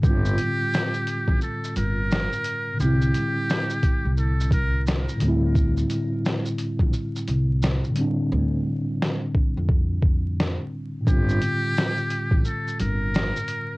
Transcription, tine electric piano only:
X:1
M:4/4
L:1/8
Q:"Swing 16ths" 1/4=87
K:Gdor
V:1 name="Tine electric piano" clef=bass
[A,,D,G,CF]8 | [A,,D,G,CE]6- [A,,D,G,CE] [A,,D,G,CE]- | [A,,D,G,CE]6- [A,,D,G,CE] [A,,D,G,CD]- | [A,,D,G,CD]6- [A,,D,G,CD] z |
[A,,D,G,CF]8 |]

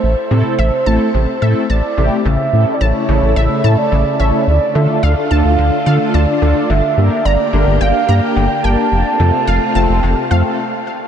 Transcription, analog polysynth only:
X:1
M:4/4
L:1/16
Q:1/4=108
K:Aphr
V:1 name="Analog polysynth"
z2 [A,CEA]2 z2 [A,CEA]2 z2 [A,CEA]2 z2 [A,CEG]2 | z2 [A,^CEA]2 z2 [A,CEA]2 z2 [A,CEA] [A,CEA]2 z [A,CEA]2 | z2 [A,DFA]2 z2 [A,DFA]2 z2 [A,DFA] [A,DFA]2 z [A,DFA]2 | z2 [B,DGB]2 z2 [B,DGB]2 z2 [B,DGB] [B,DGB]2 z [B,DGB]2 |
z2 [A,CFA]2 z2 [A,CFA]2 z2 [A,CFA] [A,CFA] z4 |]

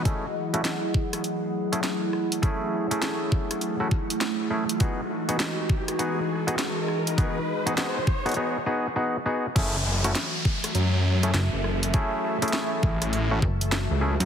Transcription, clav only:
X:1
M:4/4
L:1/16
Q:"Swing 16ths" 1/4=101
K:F#dor
V:1 name="Clav"
[A,CEG] z2 [A,CEF] z6 z [A,CEG] z4 | [A,CEG]3 [A,CEG]6 [A,CEF] z4 [A,CEG] z | [B,DFG] z2 [B,DFG] z4 [B,DFG] z2 [B,DFG] z4 | [B,DFG] z2 [B,DFG] [B,DFG] z2 [B,DFG] [B,DFG] z [B,DFG] z [B,DFG] z [B,DFG] z |
[A,CEG] z2 [A,CEF] z6 z [A,CEG] z4 | [A,CEG]3 [A,CEG]6 [A,CEF] z4 [A,CEG] z |]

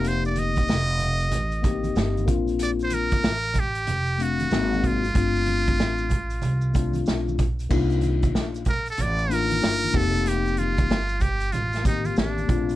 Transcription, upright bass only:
X:1
M:4/4
L:1/8
Q:"Swing 16ths" 1/4=94
K:Cdor
V:1 name="Upright bass" clef=bass
F,,,2 F,,,2 A,,,2 G,,, B,,,- | B,,,2 A,,,2 F,,,2 _A,,,2 | G,,,2 A,,,2 C,,2 =B,,,2 | C,,2 B,,,2 A,,,2 G,,, F,,,- |
F,,,2 G,,,2 A,,,2 A,,, B,,, |]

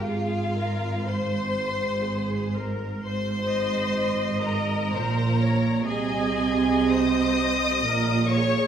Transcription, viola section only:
X:1
M:3/4
L:1/8
Q:1/4=63
K:Ab
V:1 name="Viola section"
A B c2 A B | c e e2 c d | e2 c2 B A |]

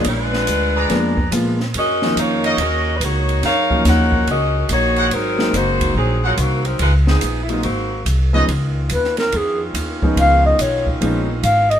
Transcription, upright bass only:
X:1
M:4/4
L:1/8
Q:"Swing" 1/4=142
K:Dbmix
V:1 name="Upright bass" clef=bass
B,,,2 =D,,2 F,,2 B,,2 | G,,2 F,,2 E,,2 D,,2 | G,,2 E,,2 D,,2 B,,,2 | A,,,2 G,,,2 B,,,2 =C,,2 |
D,,2 B,,,2 A,,,2 =C,,2 | D,,2 E,,2 F,,2 E,,2 | D,,2 C,,2 B,,,2 A,,,2 |]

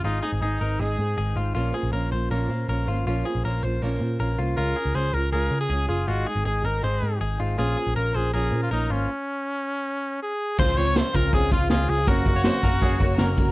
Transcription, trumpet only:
X:1
M:4/4
L:1/16
Q:1/4=160
K:Db
V:1 name="Trumpet"
E2 E2 E4 A4 z4 | z16 | z16 | B4 c2 B2 B3 A3 A2 |
G2 A2 A2 B2 c4 z4 | A4 B2 A2 A3 F E2 D2- | D12 A4 | c2 d2 c2 B2 A2 F2 F2 A2 |
G12- G2 z2 |]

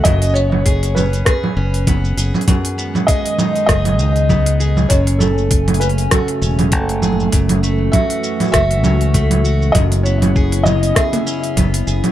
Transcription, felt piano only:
X:1
M:4/4
L:1/8
Q:"Swing 16ths" 1/4=99
K:C#m
V:1 name="Felt piano"
d c2 B B2 z2 | z2 d2 d4 | c A2 B A2 z2 | z2 e2 e4 |
d c2 d e2 z2 |]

